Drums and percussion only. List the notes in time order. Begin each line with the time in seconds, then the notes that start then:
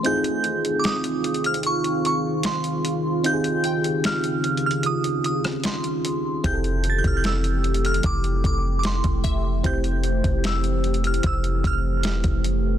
0.05 closed hi-hat
0.24 closed hi-hat
0.44 closed hi-hat
0.65 closed hi-hat
0.84 snare, closed hi-hat
1.04 closed hi-hat
1.24 closed hi-hat, open hi-hat
1.34 closed hi-hat
1.44 closed hi-hat
1.54 closed hi-hat
1.63 closed hi-hat
1.84 closed hi-hat
2.05 closed hi-hat
2.43 snare, closed hi-hat
2.64 closed hi-hat
2.85 closed hi-hat
3.24 closed hi-hat
3.44 closed hi-hat
3.64 closed hi-hat
3.84 closed hi-hat
4.04 snare, closed hi-hat
4.24 closed hi-hat
4.44 closed hi-hat, open hi-hat
4.57 closed hi-hat
4.71 closed hi-hat
4.83 closed hi-hat
5.04 closed hi-hat
5.24 closed hi-hat
5.44 cross-stick, closed hi-hat
5.64 snare, closed hi-hat
5.84 closed hi-hat
6.05 closed hi-hat
6.44 kick, closed hi-hat
6.64 closed hi-hat
6.84 closed hi-hat
7.04 kick, closed hi-hat
7.24 snare, closed hi-hat
7.44 closed hi-hat
7.64 closed hi-hat, open hi-hat
7.74 closed hi-hat
7.85 closed hi-hat
7.94 closed hi-hat
8.03 kick, closed hi-hat
8.24 closed hi-hat
8.44 kick, closed hi-hat
8.83 snare, closed hi-hat
9.04 kick, closed hi-hat
9.24 kick, closed hi-hat
9.64 kick, closed hi-hat
9.84 closed hi-hat
10.04 closed hi-hat
10.24 kick, closed hi-hat
10.44 snare, closed hi-hat
10.64 closed hi-hat
10.84 closed hi-hat, open hi-hat
10.94 closed hi-hat
11.04 closed hi-hat
11.14 closed hi-hat
11.23 kick, closed hi-hat
11.44 closed hi-hat
11.64 kick, closed hi-hat
12.03 snare, closed hi-hat
12.24 kick, closed hi-hat
12.44 closed hi-hat